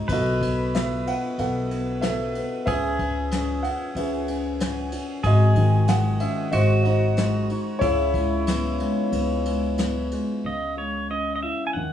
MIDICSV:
0, 0, Header, 1, 5, 480
1, 0, Start_track
1, 0, Key_signature, 4, "minor"
1, 0, Tempo, 644468
1, 63, Time_signature, 4, 2, 24, 8
1, 6302, Tempo, 655022
1, 8842, End_track
2, 0, Start_track
2, 0, Title_t, "Pedal steel guitar"
2, 0, Program_c, 0, 26
2, 59, Note_on_c, 0, 71, 89
2, 1994, Note_on_c, 0, 68, 90
2, 2043, Note_off_c, 0, 71, 0
2, 3890, Note_off_c, 0, 68, 0
2, 3899, Note_on_c, 0, 68, 87
2, 4865, Note_on_c, 0, 66, 91
2, 4886, Note_off_c, 0, 68, 0
2, 5819, Note_on_c, 0, 64, 76
2, 5849, Note_off_c, 0, 66, 0
2, 7475, Note_off_c, 0, 64, 0
2, 7768, Note_on_c, 0, 75, 54
2, 7999, Note_off_c, 0, 75, 0
2, 8002, Note_on_c, 0, 73, 57
2, 8216, Note_off_c, 0, 73, 0
2, 8241, Note_on_c, 0, 75, 60
2, 8414, Note_off_c, 0, 75, 0
2, 8423, Note_on_c, 0, 75, 44
2, 8468, Note_off_c, 0, 75, 0
2, 8474, Note_on_c, 0, 76, 58
2, 8648, Note_off_c, 0, 76, 0
2, 8651, Note_on_c, 0, 80, 50
2, 8697, Note_off_c, 0, 80, 0
2, 8700, Note_on_c, 0, 78, 67
2, 8842, Note_off_c, 0, 78, 0
2, 8842, End_track
3, 0, Start_track
3, 0, Title_t, "Upright piano"
3, 0, Program_c, 1, 0
3, 0, Control_c, 1, 64, 127
3, 0, Note_on_c, 1, 56, 55
3, 0, Note_on_c, 1, 63, 51
3, 0, Note_on_c, 1, 66, 47
3, 0, Note_on_c, 1, 72, 50
3, 67, Note_on_c, 1, 59, 67
3, 71, Control_c, 1, 64, 0
3, 75, Note_off_c, 1, 66, 0
3, 75, Note_off_c, 1, 72, 0
3, 77, Note_off_c, 1, 56, 0
3, 77, Note_off_c, 1, 63, 0
3, 91, Note_on_c, 1, 66, 64
3, 91, Note_on_c, 1, 69, 66
3, 92, Note_on_c, 1, 75, 86
3, 203, Control_c, 1, 64, 127
3, 298, Note_off_c, 1, 59, 0
3, 309, Note_on_c, 1, 59, 48
3, 545, Note_off_c, 1, 59, 0
3, 556, Note_on_c, 1, 59, 52
3, 556, Note_on_c, 1, 76, 92
3, 575, Note_off_c, 1, 75, 0
3, 776, Note_off_c, 1, 76, 0
3, 781, Note_off_c, 1, 59, 0
3, 792, Note_on_c, 1, 59, 45
3, 801, Note_on_c, 1, 78, 91
3, 1012, Note_off_c, 1, 66, 0
3, 1012, Note_off_c, 1, 69, 0
3, 1018, Note_off_c, 1, 78, 0
3, 1026, Note_off_c, 1, 59, 0
3, 1037, Note_on_c, 1, 59, 54
3, 1038, Note_on_c, 1, 78, 85
3, 1039, Note_on_c, 1, 69, 64
3, 1270, Note_off_c, 1, 59, 0
3, 1281, Note_on_c, 1, 59, 52
3, 1497, Note_off_c, 1, 69, 0
3, 1499, Note_on_c, 1, 76, 95
3, 1509, Note_on_c, 1, 69, 69
3, 1516, Note_off_c, 1, 59, 0
3, 1526, Note_off_c, 1, 78, 0
3, 1527, Note_on_c, 1, 59, 51
3, 1759, Note_off_c, 1, 59, 0
3, 1770, Note_on_c, 1, 59, 53
3, 1957, Note_off_c, 1, 69, 0
3, 1967, Note_off_c, 1, 76, 0
3, 1978, Note_on_c, 1, 76, 96
3, 1980, Note_on_c, 1, 71, 66
3, 1989, Note_on_c, 1, 68, 65
3, 1992, Note_off_c, 1, 59, 0
3, 1996, Control_c, 1, 64, 0
3, 2006, Note_on_c, 1, 61, 61
3, 2111, Control_c, 1, 64, 127
3, 2239, Note_off_c, 1, 61, 0
3, 2250, Note_on_c, 1, 61, 47
3, 2483, Note_off_c, 1, 61, 0
3, 2494, Note_on_c, 1, 61, 59
3, 2675, Note_off_c, 1, 76, 0
3, 2701, Note_on_c, 1, 78, 90
3, 2713, Note_off_c, 1, 61, 0
3, 2724, Note_on_c, 1, 61, 50
3, 2915, Note_off_c, 1, 71, 0
3, 2919, Note_off_c, 1, 68, 0
3, 2947, Note_off_c, 1, 61, 0
3, 2951, Note_off_c, 1, 78, 0
3, 2953, Note_on_c, 1, 76, 63
3, 2958, Note_on_c, 1, 61, 62
3, 2961, Note_on_c, 1, 71, 50
3, 2962, Note_on_c, 1, 68, 56
3, 3186, Note_off_c, 1, 61, 0
3, 3198, Note_on_c, 1, 61, 54
3, 3422, Note_off_c, 1, 61, 0
3, 3433, Note_on_c, 1, 61, 57
3, 3637, Note_off_c, 1, 76, 0
3, 3657, Note_off_c, 1, 61, 0
3, 3668, Note_on_c, 1, 61, 50
3, 3880, Note_off_c, 1, 71, 0
3, 3881, Note_off_c, 1, 68, 0
3, 3898, Note_off_c, 1, 61, 0
3, 3913, Control_c, 1, 64, 0
3, 3914, Note_on_c, 1, 56, 66
3, 3920, Note_on_c, 1, 66, 63
3, 3920, Note_on_c, 1, 75, 91
3, 4065, Control_c, 1, 64, 127
3, 4149, Note_on_c, 1, 51, 58
3, 4374, Note_off_c, 1, 56, 0
3, 4384, Note_on_c, 1, 78, 104
3, 4385, Note_on_c, 1, 56, 54
3, 4403, Note_off_c, 1, 75, 0
3, 4620, Note_on_c, 1, 76, 88
3, 4627, Note_on_c, 1, 61, 50
3, 4629, Note_off_c, 1, 78, 0
3, 4838, Note_off_c, 1, 66, 0
3, 4841, Note_off_c, 1, 51, 0
3, 4847, Note_off_c, 1, 56, 0
3, 4851, Note_on_c, 1, 75, 83
3, 4856, Note_off_c, 1, 61, 0
3, 4861, Note_on_c, 1, 66, 61
3, 4866, Note_off_c, 1, 76, 0
3, 4867, Control_c, 1, 64, 0
3, 4867, Note_on_c, 1, 56, 68
3, 4867, Note_on_c, 1, 72, 65
3, 5014, Control_c, 1, 64, 127
3, 5076, Note_off_c, 1, 75, 0
3, 5087, Note_off_c, 1, 66, 0
3, 5087, Note_on_c, 1, 75, 81
3, 5090, Note_off_c, 1, 72, 0
3, 5098, Note_on_c, 1, 66, 56
3, 5101, Note_on_c, 1, 72, 52
3, 5109, Note_on_c, 1, 63, 49
3, 5341, Note_off_c, 1, 56, 0
3, 5352, Note_on_c, 1, 56, 55
3, 5543, Note_off_c, 1, 75, 0
3, 5578, Note_off_c, 1, 63, 0
3, 5589, Note_on_c, 1, 63, 51
3, 5788, Note_off_c, 1, 66, 0
3, 5789, Note_off_c, 1, 72, 0
3, 5801, Note_on_c, 1, 73, 109
3, 5810, Note_off_c, 1, 56, 0
3, 5816, Note_off_c, 1, 63, 0
3, 5817, Note_on_c, 1, 68, 76
3, 5822, Note_on_c, 1, 64, 73
3, 5827, Note_on_c, 1, 49, 65
3, 5828, Control_c, 1, 64, 0
3, 5950, Control_c, 1, 64, 127
3, 6079, Note_on_c, 1, 56, 50
3, 6326, Note_on_c, 1, 59, 55
3, 6550, Note_off_c, 1, 56, 0
3, 6561, Note_on_c, 1, 56, 53
3, 6787, Note_off_c, 1, 59, 0
3, 6798, Note_on_c, 1, 59, 55
3, 7022, Note_off_c, 1, 56, 0
3, 7033, Note_on_c, 1, 56, 49
3, 7224, Note_off_c, 1, 73, 0
3, 7232, Note_off_c, 1, 68, 0
3, 7235, Note_off_c, 1, 64, 0
3, 7268, Note_off_c, 1, 59, 0
3, 7279, Note_on_c, 1, 59, 51
3, 7511, Note_off_c, 1, 56, 0
3, 7522, Note_on_c, 1, 56, 52
3, 7719, Note_off_c, 1, 49, 0
3, 7738, Note_off_c, 1, 59, 0
3, 7746, Note_off_c, 1, 56, 0
3, 7753, Control_c, 1, 64, 0
3, 7759, Note_on_c, 1, 49, 45
3, 7876, Control_c, 1, 64, 127
3, 7995, Note_on_c, 1, 56, 33
3, 8237, Note_on_c, 1, 61, 38
3, 8475, Note_on_c, 1, 64, 35
3, 8679, Note_off_c, 1, 49, 0
3, 8685, Note_off_c, 1, 56, 0
3, 8693, Note_off_c, 1, 61, 0
3, 8700, Note_off_c, 1, 64, 0
3, 8711, Control_c, 1, 64, 0
3, 8725, Note_on_c, 1, 51, 49
3, 8824, Control_c, 1, 64, 127
3, 8842, Note_off_c, 1, 51, 0
3, 8842, End_track
4, 0, Start_track
4, 0, Title_t, "Upright bass"
4, 0, Program_c, 2, 32
4, 67, Note_on_c, 2, 35, 92
4, 811, Note_off_c, 2, 35, 0
4, 1028, Note_on_c, 2, 35, 79
4, 1769, Note_off_c, 2, 35, 0
4, 1988, Note_on_c, 2, 37, 97
4, 2729, Note_off_c, 2, 37, 0
4, 2943, Note_on_c, 2, 37, 87
4, 3683, Note_off_c, 2, 37, 0
4, 3901, Note_on_c, 2, 32, 104
4, 4640, Note_off_c, 2, 32, 0
4, 4855, Note_on_c, 2, 32, 80
4, 5596, Note_off_c, 2, 32, 0
4, 5816, Note_on_c, 2, 37, 91
4, 6560, Note_off_c, 2, 37, 0
4, 6783, Note_on_c, 2, 37, 83
4, 7527, Note_off_c, 2, 37, 0
4, 7752, Note_on_c, 2, 37, 60
4, 8487, Note_off_c, 2, 37, 0
4, 8707, Note_on_c, 2, 39, 56
4, 8796, Note_off_c, 2, 39, 0
4, 8842, End_track
5, 0, Start_track
5, 0, Title_t, "Drums"
5, 66, Note_on_c, 9, 36, 90
5, 67, Note_on_c, 9, 51, 62
5, 140, Note_off_c, 9, 36, 0
5, 142, Note_off_c, 9, 51, 0
5, 309, Note_on_c, 9, 36, 66
5, 315, Note_on_c, 9, 51, 51
5, 383, Note_off_c, 9, 36, 0
5, 389, Note_off_c, 9, 51, 0
5, 554, Note_on_c, 9, 51, 64
5, 562, Note_on_c, 9, 38, 91
5, 628, Note_off_c, 9, 51, 0
5, 637, Note_off_c, 9, 38, 0
5, 798, Note_on_c, 9, 51, 49
5, 873, Note_off_c, 9, 51, 0
5, 1031, Note_on_c, 9, 51, 56
5, 1105, Note_off_c, 9, 51, 0
5, 1273, Note_on_c, 9, 51, 48
5, 1347, Note_off_c, 9, 51, 0
5, 1505, Note_on_c, 9, 51, 58
5, 1513, Note_on_c, 9, 38, 85
5, 1580, Note_off_c, 9, 51, 0
5, 1588, Note_off_c, 9, 38, 0
5, 1750, Note_on_c, 9, 51, 46
5, 1824, Note_off_c, 9, 51, 0
5, 1986, Note_on_c, 9, 51, 62
5, 1988, Note_on_c, 9, 36, 87
5, 2061, Note_off_c, 9, 51, 0
5, 2063, Note_off_c, 9, 36, 0
5, 2226, Note_on_c, 9, 51, 44
5, 2229, Note_on_c, 9, 36, 65
5, 2301, Note_off_c, 9, 51, 0
5, 2303, Note_off_c, 9, 36, 0
5, 2467, Note_on_c, 9, 51, 69
5, 2475, Note_on_c, 9, 38, 84
5, 2541, Note_off_c, 9, 51, 0
5, 2550, Note_off_c, 9, 38, 0
5, 2712, Note_on_c, 9, 51, 51
5, 2786, Note_off_c, 9, 51, 0
5, 2951, Note_on_c, 9, 51, 61
5, 3025, Note_off_c, 9, 51, 0
5, 3186, Note_on_c, 9, 51, 52
5, 3261, Note_off_c, 9, 51, 0
5, 3426, Note_on_c, 9, 51, 68
5, 3434, Note_on_c, 9, 38, 92
5, 3501, Note_off_c, 9, 51, 0
5, 3509, Note_off_c, 9, 38, 0
5, 3663, Note_on_c, 9, 51, 56
5, 3737, Note_off_c, 9, 51, 0
5, 3901, Note_on_c, 9, 51, 72
5, 3902, Note_on_c, 9, 36, 91
5, 3975, Note_off_c, 9, 51, 0
5, 3976, Note_off_c, 9, 36, 0
5, 4138, Note_on_c, 9, 51, 53
5, 4141, Note_on_c, 9, 36, 65
5, 4213, Note_off_c, 9, 51, 0
5, 4215, Note_off_c, 9, 36, 0
5, 4376, Note_on_c, 9, 51, 64
5, 4384, Note_on_c, 9, 38, 91
5, 4450, Note_off_c, 9, 51, 0
5, 4458, Note_off_c, 9, 38, 0
5, 4615, Note_on_c, 9, 51, 54
5, 4690, Note_off_c, 9, 51, 0
5, 4857, Note_on_c, 9, 51, 64
5, 4931, Note_off_c, 9, 51, 0
5, 5101, Note_on_c, 9, 51, 48
5, 5176, Note_off_c, 9, 51, 0
5, 5338, Note_on_c, 9, 51, 62
5, 5346, Note_on_c, 9, 38, 87
5, 5412, Note_off_c, 9, 51, 0
5, 5421, Note_off_c, 9, 38, 0
5, 5583, Note_on_c, 9, 51, 49
5, 5658, Note_off_c, 9, 51, 0
5, 5820, Note_on_c, 9, 36, 91
5, 5820, Note_on_c, 9, 51, 71
5, 5895, Note_off_c, 9, 36, 0
5, 5895, Note_off_c, 9, 51, 0
5, 6063, Note_on_c, 9, 36, 68
5, 6066, Note_on_c, 9, 51, 45
5, 6137, Note_off_c, 9, 36, 0
5, 6140, Note_off_c, 9, 51, 0
5, 6306, Note_on_c, 9, 51, 65
5, 6315, Note_on_c, 9, 38, 90
5, 6380, Note_off_c, 9, 51, 0
5, 6388, Note_off_c, 9, 38, 0
5, 6547, Note_on_c, 9, 51, 53
5, 6620, Note_off_c, 9, 51, 0
5, 6787, Note_on_c, 9, 51, 65
5, 6861, Note_off_c, 9, 51, 0
5, 7028, Note_on_c, 9, 51, 49
5, 7102, Note_off_c, 9, 51, 0
5, 7266, Note_on_c, 9, 51, 72
5, 7275, Note_on_c, 9, 38, 84
5, 7340, Note_off_c, 9, 51, 0
5, 7348, Note_off_c, 9, 38, 0
5, 7512, Note_on_c, 9, 51, 55
5, 7585, Note_off_c, 9, 51, 0
5, 8842, End_track
0, 0, End_of_file